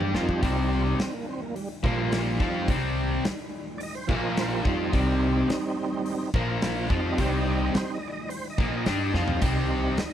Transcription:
0.00 0.12 G2 medium
0.00 0.13 G3 medium
0.00 0.13 D4 medium
0.00 0.14 G4 loud
0.00 0.14 G4 medium
0.00 mid tom medium
0.14 0.40 F2 medium
0.14 0.41 F3 medium
0.14 0.95 G3 medium
0.14 0.42 C4 medium
0.14 0.95 C4 soft
0.14 0.58 D#4 medium
0.14 0.42 F4 loud
0.14 0.28 A#4 medium
0.14 snare medium
0.29 0.42 G4 medium
0.29 kick medium
0.42 0.95 C2 medium
0.42 0.98 C3 medium
0.42 0.98 G3 medium
0.42 0.98 C4 loud
0.42 0.57 F4 medium
0.42 kick loud
0.42 open hi-hat medium
0.59 0.71 D#4 medium
0.74 0.86 F4 medium
0.86 0.98 D#4 medium
0.99 1.13 C4 medium
0.99 muted distorted electric guitar stroke medium
0.99 muted upright bass stroke soft
0.99 snare loud
0.99 open hi-hat medium
1.14 1.26 A#3 medium
1.29 1.41 C4 medium
1.42 1.55 A#3 medium
1.56 1.68 G3 medium
1.56 open hi-hat medium
1.83 2.36 A#1 medium
1.83 2.39 A#2 medium
1.83 2.21 F3 medium
1.83 2.39 F3 medium
1.83 2.11 G3 medium
1.83 2.39 A#3 medium
1.83 2.21 A#3 medium
1.83 2.21 F4 medium
1.83 kick medium
2.12 2.39 G3 loud
2.12 snare loud
2.12 open hi-hat medium
2.40 2.66 F2 medium
2.40 2.67 F3 medium
2.40 2.77 G3 medium
2.40 2.78 C4 medium
2.40 2.68 C4 medium
2.40 2.78 D#4 medium
2.40 2.68 F4 medium
2.40 kick medium
2.68 3.20 C2 medium
2.68 3.24 C3 loud
2.68 3.24 G3 medium
2.68 3.24 C4 loud
2.68 kick loud
2.68 open hi-hat medium
3.24 muted upright bass stroke soft
3.24 muted distorted electric guitar stroke medium
3.24 snare loud
3.24 open hi-hat medium
3.78 3.81 D5 medium
3.78 open hi-hat medium
3.83 3.95 D#5 loud
3.95 4.08 C5 medium
4.07 4.61 A#1 loud
4.07 4.64 A#2 medium
4.07 4.61 F3 medium
4.07 4.64 F3 medium
4.07 4.62 A#3 medium
4.07 4.65 A#3 loud
4.07 4.62 F4 medium
4.07 4.22 G4 medium
4.07 kick loud
4.19 4.23 D5 medium
4.23 4.36 D#5 loud
4.37 4.51 C5 medium
4.37 snare loud
4.37 open hi-hat medium
4.52 4.65 G4 medium
4.65 4.91 F2 medium
4.65 4.92 F3 medium
4.65 6.30 G3 medium
4.65 4.92 C4 medium
4.65 6.30 C4 soft
4.65 6.31 D#4 loud
4.65 4.93 F4 loud
4.65 kick loud
4.93 5.46 C2 medium
4.93 5.48 C3 medium
4.93 5.49 G3 loud
4.93 5.49 C4 loud
4.93 kick loud
4.93 open hi-hat medium
5.49 muted upright bass stroke soft
5.49 muted distorted electric guitar stroke medium
5.49 snare loud
5.49 open hi-hat medium
6.06 open hi-hat medium
6.34 6.86 A#1 medium
6.34 6.89 A#2 medium
6.34 6.87 F3 medium
6.34 6.89 F3 medium
6.34 6.88 A#3 soft
6.34 6.90 A#3 loud
6.34 6.88 F4 medium
6.34 kick loud
6.62 snare loud
6.62 open hi-hat medium
6.89 7.16 F2 medium
6.89 7.17 F3 medium
6.89 7.70 G3 soft
6.89 7.70 C4 soft
6.89 7.18 C4 medium
6.89 7.71 D#4 medium
6.89 7.18 F4 loud
6.89 kick loud
6.99 7.17 D#5 medium
7.17 7.70 C2 medium
7.17 7.73 C3 medium
7.17 7.74 G3 loud
7.17 7.74 C4 loud
7.17 7.36 C5 medium
7.17 kick loud
7.17 open hi-hat medium
7.36 7.53 D#5 medium
7.49 7.53 D5 medium
7.54 7.73 D#5 loud
7.72 7.98 G3 soft
7.72 7.98 C4 soft
7.72 7.99 D#4 medium
7.72 7.92 C5 medium
7.72 muted upright bass stroke soft
7.72 muted distorted electric guitar stroke medium
7.72 snare loud
7.72 open hi-hat medium
7.94 8.11 D#5 medium
8.07 8.11 D5 medium
8.12 8.30 D#5 loud
8.29 8.48 C5 medium
8.29 open hi-hat medium
8.50 8.67 D#5 medium
8.58 8.85 A#1 medium
8.58 8.85 A#2 medium
8.58 8.85 F3 medium
8.58 8.86 A#3 medium
8.58 kick loud
8.63 8.67 D5 medium
8.68 10.13 D#5 loud
8.86 9.12 G2 medium
8.86 9.13 G3 medium
8.86 9.13 D4 medium
8.86 9.14 G4 medium
8.86 snare loud
8.86 open hi-hat medium
9.14 9.40 F2 medium
9.14 9.41 F3 medium
9.14 9.94 G3 medium
9.14 9.94 C4 soft
9.14 9.41 C4 medium
9.14 9.95 D#4 medium
9.14 9.42 F4 loud
9.14 snare medium
9.28 floor tom medium
9.41 9.94 C2 medium
9.41 9.97 C3 medium
9.41 9.98 G3 medium
9.41 9.98 C4 loud
9.41 kick loud
9.41 open hi-hat medium
9.41 crash loud
9.97 muted upright bass stroke soft
9.97 muted distorted electric guitar stroke medium
9.97 snare loud
9.97 open hi-hat medium

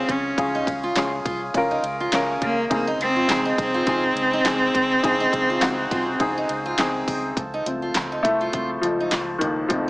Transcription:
0.00 0.39 C#3 medium
0.00 0.12 C4 loud
0.00 0.38 C#4 medium
0.00 2.70 D#4 medium
0.00 0.38 F4 medium
0.00 2.66 F4 medium
0.00 0.39 G#4 medium
0.00 7.33 G#4 medium
0.00 2.67 F5 medium
0.00 2.67 G#5 medium
0.09 0.32 C#2 medium
0.09 0.68 C#4 loud
0.09 kick medium
0.09 ride medium
0.38 0.62 C#2 loud
0.38 1.21 C#3 medium
0.38 0.84 C#4 medium
0.38 0.84 F4 medium
0.38 0.85 G#4 medium
0.38 kick loud
0.38 ride medium
0.55 0.66 D#4 medium
0.67 0.91 C#2 medium
0.67 kick medium
0.67 ride medium
0.83 1.11 F4 medium
0.96 1.19 C#2 loud
0.96 1.43 C#4 medium
0.96 1.43 F4 medium
0.96 1.43 G#4 medium
0.96 snare loud
0.96 clap medium
0.96 ride medium
1.25 1.49 C2 medium
1.25 1.41 F4 medium
1.25 kick loud
1.25 ride medium
1.54 1.78 C#2 loud
1.54 2.01 C#4 medium
1.54 2.02 F4 medium
1.54 2.02 A#4 loud
1.54 kick medium
1.54 ride medium
1.71 1.83 D#4 medium
1.83 2.07 C#2 loud
1.83 ride medium
2.00 2.12 F4 medium
2.12 2.36 C#2 loud
2.12 2.55 C#4 medium
2.12 2.59 C#4 loud
2.12 2.60 F4 medium
2.12 2.60 A#4 loud
2.12 snare loud
2.12 clap medium
2.12 ride medium
2.42 2.65 C#2 loud
2.42 2.69 A#3 loud
2.42 kick medium
2.42 ride medium
2.70 2.94 C#2 loud
2.70 3.54 C#3 medium
2.70 2.86 A#3 loud
2.70 3.17 C4 medium
2.70 3.17 D#4 medium
2.70 7.33 D#4 medium
2.70 3.17 G#4 medium
2.70 7.33 C5 medium
2.70 7.33 G#5 medium
2.70 kick loud
2.70 ride medium
2.87 2.99 D#4 medium
2.98 3.23 C#2 loud
2.98 3.55 C4 loud
2.98 ride medium
3.16 3.28 F4 medium
3.28 3.52 C#2 loud
3.28 3.75 C4 medium
3.28 3.75 D#4 medium
3.28 3.76 G#4 medium
3.28 snare loud
3.28 clap medium
3.28 ride medium
3.45 3.57 D#4 medium
3.58 3.82 C2 loud
3.58 6.76 C4 loud
3.58 kick loud
3.58 ride medium
3.74 3.86 F4 medium
3.86 4.11 C#2 loud
3.86 4.33 C4 medium
3.86 4.34 D#4 medium
3.86 4.03 F4 medium
3.86 4.34 G#4 medium
3.86 kick loud
3.86 ride medium
4.15 4.39 C#2 loud
4.15 ride medium
4.33 4.45 D#4 medium
4.44 4.69 C#2 medium
4.44 4.91 C4 loud
4.44 4.92 D#4 medium
4.44 4.92 G#4 loud
4.44 snare loud
4.44 clap medium
4.44 ride medium
4.75 4.99 C#2 medium
4.75 kick medium
4.75 ride medium
5.03 5.27 C#2 loud
5.03 5.87 C#3 medium
5.03 5.50 C4 medium
5.03 5.50 D#4 medium
5.03 5.51 G#4 loud
5.03 kick loud
5.03 ride medium
5.20 5.32 D#4 medium
5.33 5.57 C#2 medium
5.33 kick medium
5.33 ride medium
5.50 5.77 F4 medium
5.61 5.86 C#2 loud
5.61 6.08 C4 medium
5.61 6.08 D#4 medium
5.61 6.09 F#4 loud
5.61 snare loud
5.61 clap medium
5.61 ride medium
5.91 6.15 C2 medium
5.91 6.07 F4 medium
5.91 kick loud
5.91 ride medium
6.20 6.44 C#2 loud
6.20 6.66 C4 medium
6.20 6.67 D#4 medium
6.20 6.67 G#4 loud
6.20 kick loud
6.20 ride medium
6.38 6.49 D#4 medium
6.49 6.73 C#2 loud
6.49 ride medium
6.66 6.78 F4 medium
6.78 7.03 C#2 medium
6.78 7.25 C4 medium
6.78 7.22 C4 medium
6.78 7.25 D#4 medium
6.78 7.26 G#4 loud
6.78 snare loud
6.78 clap medium
6.78 ride medium
7.08 7.32 C#2 loud
7.08 kick medium
7.08 open hi-hat medium
7.08 ride medium
7.36 7.61 C#2 loud
7.36 9.90 F4 medium
7.36 9.90 A4 medium
7.36 9.90 C5 medium
7.36 9.90 A5 medium
7.36 kick loud
7.36 closed hi-hat medium
7.54 7.66 D#4 medium
7.66 7.90 C#2 medium
7.66 8.06 F3 soft
7.66 8.06 A3 soft
7.66 8.07 C4 medium
7.66 closed hi-hat medium
7.82 7.94 F4 medium
7.95 8.19 C#2 medium
7.95 snare loud
7.95 clap medium
7.95 closed hi-hat medium
8.12 8.24 D#4 medium
8.23 8.48 C2 medium
8.23 8.79 A2 medium
8.23 8.52 A3 loud
8.23 kick medium
8.23 closed hi-hat medium
8.41 8.53 F4 medium
8.53 8.77 C#2 medium
8.53 8.79 F3 soft
8.53 8.80 A3 soft
8.53 8.80 C4 soft
8.53 8.70 F4 medium
8.53 kick medium
8.53 closed hi-hat medium
8.81 9.07 C#2 loud
8.81 9.38 F2 medium
8.81 9.36 F3 medium
8.81 closed hi-hat medium
9.00 9.12 D#4 medium
9.11 9.36 C#2 medium
9.11 snare loud
9.11 clap medium
9.11 closed hi-hat medium
9.39 9.65 C#2 medium
9.39 9.49 D#2 medium
9.39 9.45 D#3 medium
9.39 kick medium
9.39 closed hi-hat medium
9.68 9.90 C#2 loud
9.68 9.70 F3 loud
9.68 9.90 F3 medium
9.68 9.90 A3 medium
9.68 9.90 C4 medium
9.68 kick loud
9.68 closed hi-hat medium
9.73 9.90 F2 medium

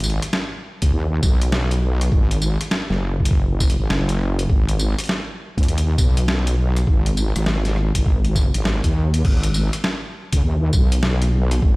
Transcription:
0.00 0.20 G#1 loud
0.00 closed hi-hat soft
0.00 tambourine medium
0.10 closed hi-hat soft
0.22 cross-stick soft
0.22 closed hi-hat medium
0.33 snare loud
0.82 0.91 C#2 medium
0.82 kick medium
0.82 closed hi-hat medium
0.93 1.21 D#2 loud
1.23 2.10 B1 loud
1.23 kick loud
1.23 tambourine medium
1.42 closed hi-hat medium
1.52 snare loud
1.71 closed hi-hat medium
2.01 cross-stick soft
2.01 closed hi-hat medium
2.12 2.57 G#1 loud
2.12 kick loud
2.31 closed hi-hat soft
2.42 tambourine medium
2.61 cross-stick soft
2.61 closed hi-hat medium
2.71 snare loud
2.90 3.76 F#1 loud
2.90 snare soft
3.20 kick medium
3.25 closed hi-hat medium
3.31 kick loud
3.60 kick loud
3.60 tambourine medium
3.70 closed hi-hat medium
3.79 3.88 G#1 loud
3.90 4.48 F#1 loud
3.90 snare loud
4.09 closed hi-hat soft
4.39 closed hi-hat medium
4.50 4.95 G#1 loud
4.50 kick loud
4.69 closed hi-hat medium
4.79 tambourine medium
4.98 cross-stick soft
4.98 closed hi-hat medium
4.98 closed hi-hat soft
4.98 closed hi-hat medium
5.04 closed hi-hat soft
5.05 closed hi-hat soft
5.07 snare loud
5.07 closed hi-hat soft
5.57 5.67 C#2 loud
5.57 kick medium
5.57 closed hi-hat soft
5.63 closed hi-hat soft
5.68 5.96 D#2 loud
5.68 closed hi-hat soft
5.78 closed hi-hat medium
5.98 6.85 B1 medium
5.98 kick loud
5.98 tambourine medium
6.17 closed hi-hat medium
6.28 snare loud
6.47 closed hi-hat medium
6.76 cross-stick soft
6.76 closed hi-hat medium
6.87 7.33 G#1 loud
6.87 kick loud
7.06 closed hi-hat medium
7.17 tambourine medium
7.36 7.92 G#1 loud
7.36 cross-stick soft
7.36 closed hi-hat medium
7.46 snare loud
7.65 snare soft
7.65 closed hi-hat soft
7.76 cross-stick soft
7.95 8.51 G#1 loud
7.95 kick medium
7.95 closed hi-hat medium
8.06 kick loud
8.25 closed hi-hat soft
8.36 kick loud
8.36 tambourine medium
8.54 8.81 G#1 loud
8.54 closed hi-hat medium
8.65 snare loud
8.84 9.23 D#2 loud
8.84 kick medium
8.84 closed hi-hat medium
9.14 closed hi-hat medium
9.25 9.70 G#1 medium
9.25 kick loud
9.25 crash medium
9.43 closed hi-hat medium
9.54 tambourine medium
9.73 cross-stick soft
9.73 closed hi-hat medium
9.84 snare loud
10.33 10.42 C#2 loud
10.33 kick medium
10.33 closed hi-hat medium
10.44 10.72 D#2 loud
10.73 11.61 B1 medium
10.73 kick loud
10.73 tambourine medium
10.92 closed hi-hat medium
11.03 snare loud
11.22 closed hi-hat medium
11.51 cross-stick soft
11.51 closed hi-hat medium
11.62 11.76 G#1 medium
11.62 kick loud

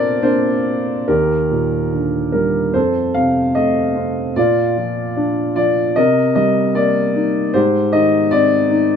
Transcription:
0.00 1.04 A#2 medium
0.00 0.22 A#3 medium
0.00 0.22 C4 soft
0.00 0.22 D4 medium
0.00 1.10 A4 medium
0.00 1.08 A#4 medium
0.00 0.23 C5 medium
0.00 0.25 D5 medium
0.22 1.05 A#3 soft
0.22 1.05 C4 soft
0.22 1.06 D4 medium
0.22 1.11 C5 medium
1.08 2.70 D#2 soft
1.08 2.71 G4 soft
1.08 2.31 A#4 medium
1.51 2.71 A#2 soft
1.92 2.72 D3 soft
2.32 2.74 G3 soft
2.32 2.75 A#4 medium
2.74 4.33 F2 soft
2.74 4.33 A4 medium
2.74 3.16 C5 medium
3.14 4.33 C3 soft
3.14 3.52 F5 medium
3.55 4.34 A3 soft
3.55 4.38 D#5 medium
3.96 4.35 C4 soft
4.36 5.92 A#2 medium
4.36 5.93 F4 medium
4.36 5.54 D5 medium
4.78 5.55 F3 soft
5.17 5.94 D4 soft
5.56 5.95 F3 soft
5.56 5.97 D5 medium
5.96 7.50 C3 medium
5.96 7.51 A#4 medium
5.96 6.34 D#5 medium
6.35 7.50 G3 soft
6.35 6.76 D#5 medium
6.75 7.51 A#3 soft
6.75 7.56 D5 medium
7.15 7.53 D#4 soft
7.54 8.96 G#2 medium
7.54 8.96 G4 medium
7.54 7.94 C5 medium
7.93 8.96 D#3 soft
7.93 8.33 D#5 medium
8.31 8.96 C4 medium
8.31 8.96 D5 medium
8.70 8.96 D#4 soft

